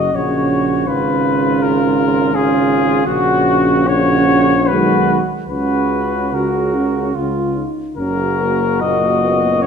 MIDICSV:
0, 0, Header, 1, 6, 480
1, 0, Start_track
1, 0, Key_signature, 6, "major"
1, 0, Tempo, 745342
1, 566, Time_signature, 3, 2, 24, 8
1, 1048, Tempo, 719424
1, 2008, Tempo, 810811
1, 3448, Tempo, 831025
1, 5368, Tempo, 786370
1, 5883, End_track
2, 0, Start_track
2, 0, Title_t, "Cornet"
2, 0, Program_c, 0, 56
2, 0, Note_on_c, 0, 75, 49
2, 98, Note_on_c, 0, 73, 49
2, 107, Note_off_c, 0, 75, 0
2, 562, Note_on_c, 0, 71, 58
2, 572, Note_off_c, 0, 73, 0
2, 1044, Note_on_c, 0, 70, 62
2, 1054, Note_off_c, 0, 71, 0
2, 1528, Note_on_c, 0, 68, 67
2, 1538, Note_off_c, 0, 70, 0
2, 2003, Note_off_c, 0, 68, 0
2, 2007, Note_on_c, 0, 66, 67
2, 2487, Note_on_c, 0, 73, 71
2, 2496, Note_off_c, 0, 66, 0
2, 2960, Note_on_c, 0, 71, 61
2, 2969, Note_off_c, 0, 73, 0
2, 3273, Note_off_c, 0, 71, 0
2, 3432, Note_on_c, 0, 71, 58
2, 3935, Note_on_c, 0, 70, 41
2, 3944, Note_off_c, 0, 71, 0
2, 4407, Note_off_c, 0, 70, 0
2, 4878, Note_on_c, 0, 70, 53
2, 5359, Note_on_c, 0, 75, 59
2, 5367, Note_off_c, 0, 70, 0
2, 5854, Note_on_c, 0, 73, 55
2, 5863, Note_off_c, 0, 75, 0
2, 5883, Note_off_c, 0, 73, 0
2, 5883, End_track
3, 0, Start_track
3, 0, Title_t, "Flugelhorn"
3, 0, Program_c, 1, 56
3, 85, Note_on_c, 1, 66, 36
3, 559, Note_on_c, 1, 65, 41
3, 568, Note_off_c, 1, 66, 0
3, 1520, Note_off_c, 1, 65, 0
3, 1524, Note_on_c, 1, 65, 52
3, 1994, Note_off_c, 1, 65, 0
3, 2015, Note_on_c, 1, 66, 51
3, 2486, Note_off_c, 1, 66, 0
3, 2491, Note_on_c, 1, 66, 44
3, 2875, Note_off_c, 1, 66, 0
3, 2975, Note_on_c, 1, 66, 44
3, 3274, Note_off_c, 1, 66, 0
3, 3443, Note_on_c, 1, 66, 35
3, 3907, Note_off_c, 1, 66, 0
3, 3927, Note_on_c, 1, 66, 35
3, 4403, Note_on_c, 1, 65, 33
3, 4411, Note_off_c, 1, 66, 0
3, 4679, Note_off_c, 1, 65, 0
3, 4874, Note_on_c, 1, 66, 39
3, 5883, Note_off_c, 1, 66, 0
3, 5883, End_track
4, 0, Start_track
4, 0, Title_t, "Euphonium"
4, 0, Program_c, 2, 58
4, 0, Note_on_c, 2, 61, 37
4, 69, Note_off_c, 2, 61, 0
4, 93, Note_on_c, 2, 61, 41
4, 559, Note_off_c, 2, 61, 0
4, 570, Note_on_c, 2, 61, 39
4, 1514, Note_off_c, 2, 61, 0
4, 1532, Note_on_c, 2, 61, 53
4, 1998, Note_off_c, 2, 61, 0
4, 2014, Note_on_c, 2, 61, 54
4, 2485, Note_off_c, 2, 61, 0
4, 2490, Note_on_c, 2, 61, 54
4, 2980, Note_on_c, 2, 56, 51
4, 2989, Note_off_c, 2, 61, 0
4, 3283, Note_off_c, 2, 56, 0
4, 3456, Note_on_c, 2, 61, 41
4, 3914, Note_off_c, 2, 61, 0
4, 3938, Note_on_c, 2, 66, 44
4, 4169, Note_on_c, 2, 61, 36
4, 4177, Note_off_c, 2, 66, 0
4, 4404, Note_off_c, 2, 61, 0
4, 4408, Note_on_c, 2, 65, 44
4, 4644, Note_on_c, 2, 63, 37
4, 4652, Note_off_c, 2, 65, 0
4, 4877, Note_off_c, 2, 63, 0
4, 4881, Note_on_c, 2, 61, 42
4, 5126, Note_on_c, 2, 58, 44
4, 5135, Note_off_c, 2, 61, 0
4, 5371, Note_off_c, 2, 58, 0
4, 5379, Note_on_c, 2, 58, 41
4, 5618, Note_on_c, 2, 59, 40
4, 5628, Note_off_c, 2, 58, 0
4, 5853, Note_on_c, 2, 61, 45
4, 5862, Note_off_c, 2, 59, 0
4, 5883, Note_off_c, 2, 61, 0
4, 5883, End_track
5, 0, Start_track
5, 0, Title_t, "Euphonium"
5, 0, Program_c, 3, 58
5, 89, Note_on_c, 3, 49, 39
5, 556, Note_off_c, 3, 49, 0
5, 559, Note_on_c, 3, 49, 43
5, 1508, Note_off_c, 3, 49, 0
5, 1526, Note_on_c, 3, 49, 43
5, 1995, Note_off_c, 3, 49, 0
5, 2002, Note_on_c, 3, 49, 53
5, 2479, Note_off_c, 3, 49, 0
5, 2493, Note_on_c, 3, 49, 48
5, 2872, Note_off_c, 3, 49, 0
5, 2972, Note_on_c, 3, 51, 43
5, 3273, Note_off_c, 3, 51, 0
5, 3450, Note_on_c, 3, 49, 38
5, 3911, Note_off_c, 3, 49, 0
5, 3927, Note_on_c, 3, 49, 33
5, 4394, Note_off_c, 3, 49, 0
5, 4405, Note_on_c, 3, 49, 31
5, 4674, Note_off_c, 3, 49, 0
5, 4867, Note_on_c, 3, 49, 35
5, 5360, Note_on_c, 3, 46, 37
5, 5368, Note_off_c, 3, 49, 0
5, 5883, Note_off_c, 3, 46, 0
5, 5883, End_track
6, 0, Start_track
6, 0, Title_t, "Tuba"
6, 0, Program_c, 4, 58
6, 84, Note_on_c, 4, 34, 34
6, 554, Note_off_c, 4, 34, 0
6, 569, Note_on_c, 4, 32, 46
6, 1982, Note_off_c, 4, 32, 0
6, 2009, Note_on_c, 4, 34, 53
6, 2973, Note_on_c, 4, 35, 50
6, 2982, Note_off_c, 4, 34, 0
6, 3279, Note_off_c, 4, 35, 0
6, 3440, Note_on_c, 4, 37, 38
6, 4379, Note_off_c, 4, 37, 0
6, 4401, Note_on_c, 4, 37, 38
6, 4672, Note_off_c, 4, 37, 0
6, 4876, Note_on_c, 4, 30, 41
6, 5883, Note_off_c, 4, 30, 0
6, 5883, End_track
0, 0, End_of_file